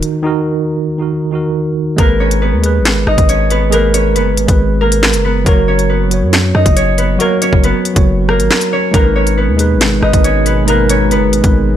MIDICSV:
0, 0, Header, 1, 6, 480
1, 0, Start_track
1, 0, Tempo, 434783
1, 269, Time_signature, 4, 2, 24, 8
1, 12991, End_track
2, 0, Start_track
2, 0, Title_t, "Harp"
2, 0, Program_c, 0, 46
2, 2195, Note_on_c, 0, 70, 104
2, 2203, Note_on_c, 0, 58, 68
2, 2429, Note_on_c, 0, 73, 83
2, 2438, Note_on_c, 0, 61, 67
2, 2670, Note_on_c, 0, 71, 73
2, 2678, Note_on_c, 0, 59, 55
2, 2736, Note_off_c, 0, 58, 0
2, 2736, Note_off_c, 0, 70, 0
2, 3395, Note_on_c, 0, 75, 83
2, 3403, Note_on_c, 0, 63, 66
2, 3630, Note_off_c, 0, 73, 0
2, 3634, Note_on_c, 0, 73, 92
2, 3638, Note_off_c, 0, 61, 0
2, 3643, Note_on_c, 0, 61, 68
2, 3871, Note_off_c, 0, 71, 0
2, 3875, Note_on_c, 0, 71, 89
2, 3879, Note_off_c, 0, 59, 0
2, 3883, Note_on_c, 0, 59, 70
2, 4112, Note_on_c, 0, 70, 100
2, 4121, Note_on_c, 0, 58, 77
2, 4178, Note_off_c, 0, 59, 0
2, 4178, Note_off_c, 0, 71, 0
2, 4345, Note_off_c, 0, 73, 0
2, 4349, Note_on_c, 0, 73, 86
2, 4354, Note_off_c, 0, 61, 0
2, 4358, Note_on_c, 0, 61, 62
2, 4587, Note_on_c, 0, 71, 89
2, 4596, Note_on_c, 0, 59, 64
2, 4654, Note_off_c, 0, 58, 0
2, 4654, Note_off_c, 0, 70, 0
2, 5309, Note_on_c, 0, 70, 91
2, 5318, Note_on_c, 0, 58, 57
2, 5364, Note_off_c, 0, 75, 0
2, 5375, Note_off_c, 0, 59, 0
2, 5375, Note_off_c, 0, 71, 0
2, 5791, Note_on_c, 0, 71, 79
2, 5801, Note_on_c, 0, 59, 64
2, 5858, Note_off_c, 0, 58, 0
2, 5858, Note_off_c, 0, 70, 0
2, 6032, Note_on_c, 0, 70, 96
2, 6041, Note_on_c, 0, 58, 80
2, 6099, Note_off_c, 0, 59, 0
2, 6099, Note_off_c, 0, 71, 0
2, 6265, Note_off_c, 0, 73, 0
2, 6270, Note_on_c, 0, 73, 84
2, 6274, Note_off_c, 0, 61, 0
2, 6278, Note_on_c, 0, 61, 63
2, 6388, Note_off_c, 0, 63, 0
2, 6509, Note_on_c, 0, 71, 74
2, 6517, Note_on_c, 0, 59, 54
2, 6575, Note_off_c, 0, 58, 0
2, 6575, Note_off_c, 0, 70, 0
2, 7228, Note_on_c, 0, 75, 79
2, 7237, Note_on_c, 0, 63, 63
2, 7464, Note_off_c, 0, 73, 0
2, 7468, Note_on_c, 0, 73, 91
2, 7474, Note_off_c, 0, 61, 0
2, 7478, Note_on_c, 0, 61, 62
2, 7703, Note_off_c, 0, 71, 0
2, 7707, Note_on_c, 0, 71, 88
2, 7711, Note_off_c, 0, 59, 0
2, 7716, Note_on_c, 0, 59, 66
2, 7953, Note_on_c, 0, 70, 97
2, 7961, Note_on_c, 0, 58, 77
2, 8019, Note_off_c, 0, 59, 0
2, 8019, Note_off_c, 0, 71, 0
2, 8186, Note_off_c, 0, 73, 0
2, 8190, Note_on_c, 0, 73, 83
2, 8195, Note_off_c, 0, 61, 0
2, 8199, Note_on_c, 0, 61, 67
2, 8435, Note_on_c, 0, 71, 87
2, 8444, Note_on_c, 0, 59, 67
2, 8501, Note_off_c, 0, 58, 0
2, 8501, Note_off_c, 0, 70, 0
2, 9153, Note_on_c, 0, 70, 83
2, 9163, Note_on_c, 0, 58, 69
2, 9198, Note_off_c, 0, 75, 0
2, 9219, Note_off_c, 0, 59, 0
2, 9219, Note_off_c, 0, 71, 0
2, 9630, Note_off_c, 0, 73, 0
2, 9635, Note_on_c, 0, 73, 88
2, 9639, Note_off_c, 0, 61, 0
2, 9644, Note_on_c, 0, 61, 68
2, 9867, Note_off_c, 0, 70, 0
2, 9872, Note_on_c, 0, 70, 92
2, 9876, Note_off_c, 0, 58, 0
2, 9880, Note_on_c, 0, 58, 74
2, 10104, Note_off_c, 0, 73, 0
2, 10108, Note_on_c, 0, 73, 79
2, 10113, Note_off_c, 0, 61, 0
2, 10117, Note_on_c, 0, 61, 65
2, 10222, Note_off_c, 0, 63, 0
2, 10349, Note_on_c, 0, 71, 79
2, 10358, Note_on_c, 0, 59, 62
2, 10416, Note_off_c, 0, 58, 0
2, 10416, Note_off_c, 0, 70, 0
2, 11070, Note_on_c, 0, 75, 84
2, 11079, Note_on_c, 0, 63, 63
2, 11302, Note_off_c, 0, 73, 0
2, 11307, Note_on_c, 0, 73, 86
2, 11311, Note_off_c, 0, 61, 0
2, 11316, Note_on_c, 0, 61, 74
2, 11543, Note_off_c, 0, 71, 0
2, 11548, Note_on_c, 0, 71, 89
2, 11552, Note_off_c, 0, 59, 0
2, 11556, Note_on_c, 0, 59, 64
2, 11791, Note_on_c, 0, 70, 91
2, 11799, Note_on_c, 0, 58, 78
2, 11857, Note_off_c, 0, 59, 0
2, 11857, Note_off_c, 0, 71, 0
2, 12029, Note_off_c, 0, 73, 0
2, 12034, Note_on_c, 0, 73, 89
2, 12038, Note_off_c, 0, 61, 0
2, 12042, Note_on_c, 0, 61, 66
2, 12273, Note_on_c, 0, 71, 89
2, 12282, Note_on_c, 0, 59, 62
2, 12339, Note_off_c, 0, 58, 0
2, 12339, Note_off_c, 0, 70, 0
2, 12991, Note_off_c, 0, 59, 0
2, 12991, Note_off_c, 0, 61, 0
2, 12991, Note_off_c, 0, 63, 0
2, 12991, Note_off_c, 0, 71, 0
2, 12991, Note_off_c, 0, 73, 0
2, 12991, Note_off_c, 0, 75, 0
2, 12991, End_track
3, 0, Start_track
3, 0, Title_t, "Tine electric piano"
3, 0, Program_c, 1, 4
3, 0, Control_c, 1, 64, 127
3, 0, Note_on_c, 1, 51, 78
3, 0, Note_on_c, 1, 63, 74
3, 0, Note_on_c, 1, 66, 68
3, 0, Note_on_c, 1, 70, 83
3, 249, Note_off_c, 1, 51, 0
3, 249, Note_on_c, 1, 51, 104
3, 264, Note_off_c, 1, 63, 0
3, 264, Note_on_c, 1, 63, 96
3, 279, Note_off_c, 1, 66, 0
3, 279, Note_on_c, 1, 66, 91
3, 294, Note_off_c, 1, 70, 0
3, 294, Note_on_c, 1, 70, 109
3, 857, Note_off_c, 1, 51, 0
3, 864, Note_off_c, 1, 63, 0
3, 871, Note_off_c, 1, 66, 0
3, 879, Note_off_c, 1, 70, 0
3, 1084, Note_on_c, 1, 51, 74
3, 1099, Note_on_c, 1, 63, 66
3, 1114, Note_on_c, 1, 66, 61
3, 1129, Note_on_c, 1, 70, 73
3, 1353, Note_off_c, 1, 51, 0
3, 1360, Note_off_c, 1, 63, 0
3, 1368, Note_off_c, 1, 66, 0
3, 1375, Note_off_c, 1, 70, 0
3, 1448, Note_on_c, 1, 51, 78
3, 1463, Note_on_c, 1, 63, 74
3, 1477, Note_on_c, 1, 66, 72
3, 1492, Note_on_c, 1, 70, 83
3, 1970, Note_off_c, 1, 51, 0
3, 1978, Note_off_c, 1, 63, 0
3, 1985, Note_off_c, 1, 66, 0
3, 1993, Note_off_c, 1, 70, 0
3, 2169, Note_on_c, 1, 56, 99
3, 2184, Note_on_c, 1, 68, 93
3, 2199, Note_on_c, 1, 70, 92
3, 2205, Control_c, 1, 64, 0
3, 2214, Note_on_c, 1, 71, 112
3, 2378, Control_c, 1, 64, 127
3, 2691, Note_off_c, 1, 56, 0
3, 2698, Note_off_c, 1, 68, 0
3, 2706, Note_off_c, 1, 70, 0
3, 2713, Note_off_c, 1, 71, 0
3, 2891, Note_on_c, 1, 56, 75
3, 2906, Note_on_c, 1, 68, 69
3, 2935, Note_on_c, 1, 71, 92
3, 3583, Note_off_c, 1, 56, 0
3, 3590, Note_off_c, 1, 68, 0
3, 3605, Note_off_c, 1, 71, 0
3, 4085, Note_on_c, 1, 56, 101
3, 4099, Note_on_c, 1, 68, 94
3, 4114, Note_on_c, 1, 70, 91
3, 4129, Note_on_c, 1, 71, 110
3, 4694, Note_off_c, 1, 56, 0
3, 4702, Note_off_c, 1, 68, 0
3, 4709, Note_off_c, 1, 70, 0
3, 4717, Note_off_c, 1, 71, 0
3, 4926, Note_on_c, 1, 56, 76
3, 4940, Note_on_c, 1, 68, 68
3, 4970, Note_on_c, 1, 71, 86
3, 5620, Note_off_c, 1, 56, 0
3, 5627, Note_off_c, 1, 68, 0
3, 5642, Note_off_c, 1, 71, 0
3, 6015, Note_on_c, 1, 54, 96
3, 6029, Note_on_c, 1, 66, 98
3, 6043, Control_c, 1, 64, 0
3, 6044, Note_on_c, 1, 70, 87
3, 6059, Note_on_c, 1, 73, 117
3, 6258, Control_c, 1, 64, 127
3, 6534, Note_off_c, 1, 54, 0
3, 6541, Note_off_c, 1, 66, 0
3, 6549, Note_off_c, 1, 70, 0
3, 6556, Note_off_c, 1, 73, 0
3, 6729, Note_on_c, 1, 54, 77
3, 6744, Note_on_c, 1, 66, 68
3, 6774, Note_on_c, 1, 73, 84
3, 7422, Note_off_c, 1, 54, 0
3, 7429, Note_off_c, 1, 66, 0
3, 7444, Note_off_c, 1, 73, 0
3, 7925, Note_on_c, 1, 54, 105
3, 7940, Note_on_c, 1, 66, 102
3, 7955, Note_on_c, 1, 70, 99
3, 7969, Note_on_c, 1, 73, 116
3, 8534, Note_off_c, 1, 54, 0
3, 8542, Note_off_c, 1, 66, 0
3, 8549, Note_off_c, 1, 70, 0
3, 8557, Note_off_c, 1, 73, 0
3, 8761, Note_on_c, 1, 54, 73
3, 8777, Note_on_c, 1, 66, 72
3, 8806, Note_on_c, 1, 73, 83
3, 9458, Note_off_c, 1, 54, 0
3, 9466, Note_off_c, 1, 66, 0
3, 9480, Note_off_c, 1, 73, 0
3, 9842, Note_on_c, 1, 56, 98
3, 9856, Note_on_c, 1, 63, 92
3, 9871, Note_on_c, 1, 70, 100
3, 9884, Control_c, 1, 64, 0
3, 9886, Note_on_c, 1, 71, 106
3, 10063, Control_c, 1, 64, 127
3, 10367, Note_off_c, 1, 56, 0
3, 10375, Note_off_c, 1, 63, 0
3, 10382, Note_off_c, 1, 70, 0
3, 10389, Note_off_c, 1, 71, 0
3, 10562, Note_on_c, 1, 56, 82
3, 10577, Note_on_c, 1, 63, 73
3, 10591, Note_on_c, 1, 68, 69
3, 10606, Note_on_c, 1, 71, 89
3, 10917, Note_off_c, 1, 56, 0
3, 10924, Note_off_c, 1, 63, 0
3, 10932, Note_off_c, 1, 68, 0
3, 10939, Note_off_c, 1, 71, 0
3, 11041, Note_on_c, 1, 56, 79
3, 11056, Note_on_c, 1, 63, 75
3, 11070, Note_on_c, 1, 70, 68
3, 11085, Note_on_c, 1, 71, 85
3, 11567, Note_off_c, 1, 56, 0
3, 11574, Note_off_c, 1, 63, 0
3, 11582, Note_off_c, 1, 70, 0
3, 11589, Note_off_c, 1, 71, 0
3, 11767, Note_on_c, 1, 56, 104
3, 11781, Note_on_c, 1, 63, 90
3, 11796, Note_on_c, 1, 70, 95
3, 11811, Note_on_c, 1, 71, 110
3, 12375, Note_off_c, 1, 56, 0
3, 12382, Note_off_c, 1, 63, 0
3, 12390, Note_off_c, 1, 70, 0
3, 12397, Note_off_c, 1, 71, 0
3, 12598, Note_on_c, 1, 56, 68
3, 12613, Note_on_c, 1, 63, 58
3, 12628, Note_on_c, 1, 70, 65
3, 12642, Note_on_c, 1, 71, 80
3, 12870, Note_off_c, 1, 56, 0
3, 12877, Note_off_c, 1, 63, 0
3, 12884, Note_off_c, 1, 70, 0
3, 12892, Note_off_c, 1, 71, 0
3, 12991, End_track
4, 0, Start_track
4, 0, Title_t, "Analog synth pad"
4, 0, Program_c, 2, 89
4, 9869, Note_on_c, 2, 47, 95
4, 9870, Note_on_c, 2, 56, 82
4, 12991, Note_off_c, 2, 47, 0
4, 12991, Note_off_c, 2, 56, 0
4, 12991, End_track
5, 0, Start_track
5, 0, Title_t, "808-style bass"
5, 0, Program_c, 3, 38
5, 2190, Note_on_c, 3, 32, 105
5, 2790, Note_on_c, 3, 39, 100
5, 2806, Note_off_c, 3, 32, 0
5, 3089, Note_on_c, 3, 32, 96
5, 3106, Note_off_c, 3, 39, 0
5, 3374, Note_off_c, 3, 32, 0
5, 3389, Note_on_c, 3, 32, 103
5, 3504, Note_off_c, 3, 32, 0
5, 3509, Note_on_c, 3, 32, 114
5, 4589, Note_on_c, 3, 30, 102
5, 4605, Note_off_c, 3, 32, 0
5, 4770, Note_on_c, 3, 32, 98
5, 4787, Note_off_c, 3, 30, 0
5, 4941, Note_off_c, 3, 32, 0
5, 4950, Note_on_c, 3, 32, 105
5, 5671, Note_on_c, 3, 30, 102
5, 5687, Note_off_c, 3, 32, 0
5, 6012, Note_off_c, 3, 30, 0
5, 6030, Note_on_c, 3, 30, 108
5, 6869, Note_on_c, 3, 42, 99
5, 6885, Note_off_c, 3, 30, 0
5, 7211, Note_off_c, 3, 42, 0
5, 7228, Note_on_c, 3, 42, 101
5, 7344, Note_off_c, 3, 42, 0
5, 7349, Note_on_c, 3, 30, 105
5, 7925, Note_off_c, 3, 30, 0
5, 8309, Note_on_c, 3, 30, 103
5, 8539, Note_off_c, 3, 30, 0
5, 8790, Note_on_c, 3, 30, 101
5, 9270, Note_on_c, 3, 32, 101
5, 9287, Note_off_c, 3, 30, 0
5, 9384, Note_off_c, 3, 32, 0
5, 9869, Note_on_c, 3, 32, 108
5, 10468, Note_on_c, 3, 39, 103
5, 10485, Note_off_c, 3, 32, 0
5, 10767, Note_on_c, 3, 32, 100
5, 10784, Note_off_c, 3, 39, 0
5, 11053, Note_off_c, 3, 32, 0
5, 11067, Note_on_c, 3, 32, 104
5, 11183, Note_off_c, 3, 32, 0
5, 11188, Note_on_c, 3, 32, 110
5, 12269, Note_on_c, 3, 30, 101
5, 12285, Note_off_c, 3, 32, 0
5, 12449, Note_on_c, 3, 32, 103
5, 12465, Note_off_c, 3, 30, 0
5, 12620, Note_off_c, 3, 32, 0
5, 12628, Note_on_c, 3, 32, 100
5, 12991, Note_off_c, 3, 32, 0
5, 12991, End_track
6, 0, Start_track
6, 0, Title_t, "Drums"
6, 28, Note_on_c, 9, 42, 67
6, 138, Note_off_c, 9, 42, 0
6, 2190, Note_on_c, 9, 36, 125
6, 2190, Note_on_c, 9, 42, 86
6, 2300, Note_off_c, 9, 36, 0
6, 2300, Note_off_c, 9, 42, 0
6, 2552, Note_on_c, 9, 42, 70
6, 2663, Note_off_c, 9, 42, 0
6, 2910, Note_on_c, 9, 42, 79
6, 3020, Note_off_c, 9, 42, 0
6, 3150, Note_on_c, 9, 38, 117
6, 3150, Note_on_c, 9, 42, 76
6, 3160, Note_on_c, 9, 39, 93
6, 3261, Note_off_c, 9, 38, 0
6, 3261, Note_off_c, 9, 42, 0
6, 3270, Note_off_c, 9, 39, 0
6, 3390, Note_on_c, 9, 37, 103
6, 3500, Note_off_c, 9, 37, 0
6, 3510, Note_on_c, 9, 36, 93
6, 3511, Note_on_c, 9, 42, 90
6, 3620, Note_off_c, 9, 36, 0
6, 3622, Note_off_c, 9, 42, 0
6, 3632, Note_on_c, 9, 42, 94
6, 3742, Note_off_c, 9, 42, 0
6, 3869, Note_on_c, 9, 42, 71
6, 3980, Note_off_c, 9, 42, 0
6, 4112, Note_on_c, 9, 42, 85
6, 4222, Note_off_c, 9, 42, 0
6, 4350, Note_on_c, 9, 42, 104
6, 4461, Note_off_c, 9, 42, 0
6, 4591, Note_on_c, 9, 42, 71
6, 4701, Note_off_c, 9, 42, 0
6, 4829, Note_on_c, 9, 42, 80
6, 4940, Note_off_c, 9, 42, 0
6, 4950, Note_on_c, 9, 36, 99
6, 4950, Note_on_c, 9, 42, 82
6, 5061, Note_off_c, 9, 36, 0
6, 5061, Note_off_c, 9, 42, 0
6, 5430, Note_on_c, 9, 42, 91
6, 5541, Note_off_c, 9, 42, 0
6, 5551, Note_on_c, 9, 38, 126
6, 5560, Note_on_c, 9, 39, 103
6, 5661, Note_off_c, 9, 38, 0
6, 5669, Note_on_c, 9, 42, 83
6, 5671, Note_off_c, 9, 39, 0
6, 5779, Note_off_c, 9, 42, 0
6, 6030, Note_on_c, 9, 36, 126
6, 6030, Note_on_c, 9, 42, 85
6, 6140, Note_off_c, 9, 36, 0
6, 6141, Note_off_c, 9, 42, 0
6, 6391, Note_on_c, 9, 42, 67
6, 6501, Note_off_c, 9, 42, 0
6, 6748, Note_on_c, 9, 42, 76
6, 6859, Note_off_c, 9, 42, 0
6, 6988, Note_on_c, 9, 38, 113
6, 6988, Note_on_c, 9, 42, 81
6, 6997, Note_on_c, 9, 39, 92
6, 7098, Note_off_c, 9, 38, 0
6, 7098, Note_off_c, 9, 42, 0
6, 7108, Note_off_c, 9, 39, 0
6, 7229, Note_on_c, 9, 37, 98
6, 7339, Note_off_c, 9, 37, 0
6, 7349, Note_on_c, 9, 36, 91
6, 7350, Note_on_c, 9, 42, 95
6, 7459, Note_off_c, 9, 36, 0
6, 7461, Note_off_c, 9, 42, 0
6, 7470, Note_on_c, 9, 42, 94
6, 7580, Note_off_c, 9, 42, 0
6, 7707, Note_on_c, 9, 42, 73
6, 7817, Note_off_c, 9, 42, 0
6, 7949, Note_on_c, 9, 42, 82
6, 8059, Note_off_c, 9, 42, 0
6, 8189, Note_on_c, 9, 42, 101
6, 8300, Note_off_c, 9, 42, 0
6, 8309, Note_on_c, 9, 36, 96
6, 8419, Note_off_c, 9, 36, 0
6, 8430, Note_on_c, 9, 42, 67
6, 8540, Note_off_c, 9, 42, 0
6, 8669, Note_on_c, 9, 42, 80
6, 8779, Note_off_c, 9, 42, 0
6, 8789, Note_on_c, 9, 36, 102
6, 8790, Note_on_c, 9, 42, 83
6, 8900, Note_off_c, 9, 36, 0
6, 8900, Note_off_c, 9, 42, 0
6, 9149, Note_on_c, 9, 37, 102
6, 9260, Note_off_c, 9, 37, 0
6, 9271, Note_on_c, 9, 42, 92
6, 9381, Note_off_c, 9, 42, 0
6, 9390, Note_on_c, 9, 38, 124
6, 9399, Note_on_c, 9, 39, 105
6, 9501, Note_off_c, 9, 38, 0
6, 9508, Note_on_c, 9, 42, 79
6, 9510, Note_off_c, 9, 39, 0
6, 9619, Note_off_c, 9, 42, 0
6, 9869, Note_on_c, 9, 36, 122
6, 9869, Note_on_c, 9, 42, 85
6, 9979, Note_off_c, 9, 36, 0
6, 9980, Note_off_c, 9, 42, 0
6, 10231, Note_on_c, 9, 42, 67
6, 10341, Note_off_c, 9, 42, 0
6, 10588, Note_on_c, 9, 42, 81
6, 10699, Note_off_c, 9, 42, 0
6, 10828, Note_on_c, 9, 38, 114
6, 10828, Note_on_c, 9, 42, 77
6, 10838, Note_on_c, 9, 39, 89
6, 10939, Note_off_c, 9, 38, 0
6, 10939, Note_off_c, 9, 42, 0
6, 10948, Note_off_c, 9, 39, 0
6, 11068, Note_on_c, 9, 37, 98
6, 11178, Note_off_c, 9, 37, 0
6, 11188, Note_on_c, 9, 36, 92
6, 11189, Note_on_c, 9, 42, 90
6, 11298, Note_off_c, 9, 36, 0
6, 11299, Note_off_c, 9, 42, 0
6, 11309, Note_on_c, 9, 42, 92
6, 11420, Note_off_c, 9, 42, 0
6, 11547, Note_on_c, 9, 42, 74
6, 11657, Note_off_c, 9, 42, 0
6, 11788, Note_on_c, 9, 42, 87
6, 11899, Note_off_c, 9, 42, 0
6, 12028, Note_on_c, 9, 42, 105
6, 12138, Note_off_c, 9, 42, 0
6, 12268, Note_on_c, 9, 42, 68
6, 12378, Note_off_c, 9, 42, 0
6, 12508, Note_on_c, 9, 42, 82
6, 12618, Note_off_c, 9, 42, 0
6, 12628, Note_on_c, 9, 42, 82
6, 12629, Note_on_c, 9, 36, 103
6, 12738, Note_off_c, 9, 42, 0
6, 12739, Note_off_c, 9, 36, 0
6, 12991, End_track
0, 0, End_of_file